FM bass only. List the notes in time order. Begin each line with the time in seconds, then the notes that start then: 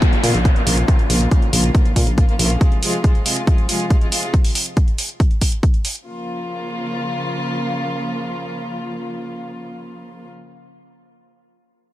0.24 A#2
0.34 A#1
0.67 A#1
1.10 A#1
1.53 A#1
1.96 A#2
2.07 A#1
2.39 A#1